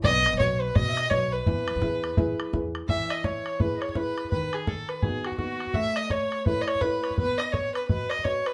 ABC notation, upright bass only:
X:1
M:4/4
L:1/16
Q:"Swing" 1/4=168
K:E
V:1 name="Upright bass" clef=bass
B,,,3 B,,, B,,,4 B,,4 B,,,4 | E,,3 E,, E,,4 E,4 E,,4 | z16 | z16 |
z16 | z16 |]